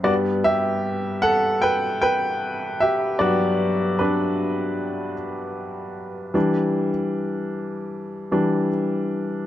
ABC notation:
X:1
M:4/4
L:1/8
Q:"Swing 16ths" 1/4=76
K:G
V:1 name="Grand piano"
[Fd] [Ge]2 [Af] [Bg] [Bg]2 [Ge] | [Fd]2 [DB]3 z3 | z8 |]
V:2 name="Grand piano" clef=bass
[G,,G,B,]8 | [G,,F,B,]8 | [E,G,D] z4 [E,G,D] z2 |]